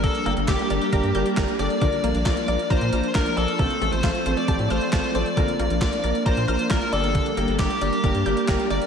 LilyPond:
<<
  \new Staff \with { instrumentName = "Synth arpeggio sound" } { \time 4/4 \key g \dorian \tempo 4 = 135 d8 bes8 g'8 d''8 bes''8 g'''8 bes''8 d''8 | d8 bes8 f'8 d''8 bes''8 f'''8 bes''8 d''8 | c8 a8 f'8 c''8 a''8 f'''8 a''8 c''8 | d8 bes8 f'8 d''8 bes''8 f'''8 bes''8 d''8 |
d8 bes8 g'8 d''8 bes''8 g'''8 bes''8 d''8 | }
  \new Staff \with { instrumentName = "Lead electric guitar" } { \time 4/4 \key g \dorian a'8 a'8 g'2~ g'8 d''8~ | d''4 d''4 c''4 bes'8 a'8 | a'8. c''4 d''16 d''8 c''8 c''8 d''8~ | d''4 d''4 c''8 c''8 bes'8 a'8~ |
a'4 g'2~ g'8 d''8 | }
  \new Staff \with { instrumentName = "Grand piano" } { \time 4/4 \key g \dorian <bes d' g' bes'>8 <bes d' g' bes'>16 r16 <bes d' g' bes'>16 r16 <bes d' g' bes'>16 r16 <bes d' g' bes'>16 r16 <bes d' g' bes'>16 r16 <bes d' g' bes'>16 r16 <bes d' g' a'>16 r16 | <bes d' f' bes'>16 r16 <bes d' f' bes'>16 r16 <bes d' f' bes'>16 r16 <bes d' f' bes'>16 r16 <bes d' f' bes'>16 r16 <bes d' f' bes'>16 r16 <bes d' f' bes'>16 r16 <bes d' f' bes'>16 r16 | <a c' f' a'>16 r16 <a c' f' a'>16 r16 <a c' f' a'>16 r16 <a c' f' a'>16 r16 <a c' f' g'>16 r16 <a c' f' a'>16 r16 <a c' f' a'>16 r16 <a c' f' a'>16 r16 | <bes d' f' bes'>16 r16 <bes d' f' bes'>16 r16 <bes d' f' bes'>16 r16 <bes d' f' bes'>16 r16 <bes d' f' bes'>16 r16 <bes d' f' bes'>16 r16 <bes d' f' bes'>16 r16 <bes d' g' d''>8~ |
<bes d' g' d''>8 <bes d' g' bes'>16 r16 <bes d' g' bes'>16 r16 <bes d' g' bes'>16 r16 <bes d' g' bes'>16 r16 <bes d' g' bes'>16 r16 <bes d' g' bes'>16 r16 <bes d' g' bes'>16 r16 | }
  \new Staff \with { instrumentName = "String machine" } { \time 4/4 \key g \dorian << { <bes d'>1~ | <bes d'>1 | <a c'>1 | <bes d'>1~ |
<bes d'>1 | } \\ { g1 | f1~ | f1~ | f2.~ f8 g8~ |
g1 | } >> }
  \new Staff \with { instrumentName = "Analog synth bass" } { \clef bass \time 4/4 \key g \dorian r8 g,,16 g,,16 g,,16 r16 g,,16 r16 g,,16 g,16 g,,16 r16 g,,16 r16 g,,16 r16 | bes,,16 r16 bes,,16 bes,,16 bes,,16 r16 bes,,16 r16 bes,,16 bes,16 bes,,16 r16 bes,,16 r16 bes,,16 r16 | a,,16 r16 a,,16 a,,16 a,,16 r16 a,,16 r16 a,,16 a,16 a,,16 r16 a,,16 r16 a,,16 r16 | bes,,16 r16 bes,,16 bes,,16 bes,,16 r16 bes,,16 r16 bes,,16 bes,16 bes,,16 r16 bes,,16 r16 g,,8~ |
g,,16 r16 g,,16 g,,16 g,,16 r16 g,,16 r16 g,,16 g,16 g,,16 r16 g,,16 r16 g,,16 r16 | }
  \new DrumStaff \with { instrumentName = "Drums" } \drummode { \time 4/4 <hh bd>16 hh16 hh16 hh16 <hc hh bd sn>16 hh16 hh16 hh16 <hh bd>16 hh16 hh16 hh16 <hc hh bd sn>16 hh16 hh16 hh16 | <hh bd>16 hh16 hh16 hh16 <hc hh bd sn>16 hh16 hh16 hh16 <hh bd>16 hh16 hh16 hh16 <hc hh bd sn>16 hh16 hh16 hh16 | <hh bd>16 hh16 hh16 hh16 <hc hh bd sn>16 hh16 hh16 hh16 <hh bd>16 hh16 hh16 hh16 <hc hh bd sn>16 hh16 hh16 hh16 | <hh bd>16 hh16 hh16 hh16 <hc hh bd sn>16 hh16 hh16 hh16 <hh bd>16 hh16 hh16 hh16 <hc hh bd sn>16 hh16 hh16 hh16 |
<hh bd>16 hh16 hh16 hh16 <hc hh bd sn>16 hh16 hh16 hh16 <hh bd>16 hh16 hh16 hh16 <hc hh bd sn>16 hh16 hh16 hh16 | }
>>